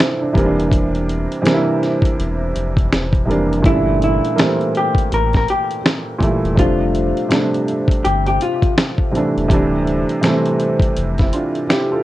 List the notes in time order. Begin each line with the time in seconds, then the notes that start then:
Already playing: C3 E3 G3 A3 C4 D4 E4 F4
0.00 snare, closed hi-hat
0.21 D4
0.32 E1 C3 E3 G3, kick
0.37 A#3 C4, closed hi-hat
0.45 D4
0.59 closed hi-hat
0.71 kick, closed hi-hat
0.95 closed hi-hat
1.09 closed hi-hat
1.32 closed hi-hat
1.42 C3 E3 G3, closed hi-hat
1.46 A#3 D4, snare
1.54 E4
1.83 snare, closed hi-hat
2.02 kick, closed hi-hat
2.20 E1, closed hi-hat
2.56 F1, closed hi-hat
2.77 kick, closed hi-hat
2.92 E1, snare, closed hi-hat
3.13 kick, closed hi-hat
3.25 F1 C3 E3 G3
3.30 A#3 D4, closed hi-hat
3.53 closed hi-hat
3.63 G1 A#2 E3 G3 E4, kick, closed hi-hat
3.67 A3 C#4
3.75 D4
4.02 E4, closed hi-hat
4.25 closed hi-hat
4.36 E3 G3 A#3, snare, closed hi-hat
4.40 A3 C4
4.61 closed hi-hat
4.75 G4, closed hi-hat
4.95 kick, closed hi-hat
5.12 A1 A#4, closed hi-hat
5.33 A#4, kick, snare, closed hi-hat
5.48 G4, closed hi-hat
5.71 closed hi-hat
5.86 snare, closed hi-hat
6.19 A#2 E3 G3, kick, closed hi-hat
6.23 A3 E4
6.44 E1, closed hi-hat
6.55 F1 C3 F3 G3, kick, closed hi-hat
6.59 A3 D4 F4
6.95 closed hi-hat
7.17 closed hi-hat
7.29 C3 F3 G3, snare, closed hi-hat
7.33 A3 D4
7.54 closed hi-hat
7.68 closed hi-hat
7.88 kick, closed hi-hat
8.04 G1 G4, closed hi-hat
8.26 G4, closed hi-hat
8.41 F4, closed hi-hat
8.62 kick, closed hi-hat
8.78 snare, closed hi-hat
8.98 kick
9.11 C3 E3 G3, closed hi-hat
9.16 A3 D4
9.37 E1, closed hi-hat
9.48 D1 C3 E3 G3, kick, closed hi-hat
9.52 A3 D4
9.87 closed hi-hat
10.09 closed hi-hat
10.21 C3 E3 G3, snare, closed hi-hat
10.25 A3 C4
10.46 closed hi-hat
10.60 closed hi-hat
10.80 kick, closed hi-hat
10.97 F1, closed hi-hat
11.18 C4 E4, kick, snare, closed hi-hat
11.33 D4 F4, closed hi-hat
11.55 closed hi-hat
11.69 E4 G4, snare, closed hi-hat
11.91 F4 A4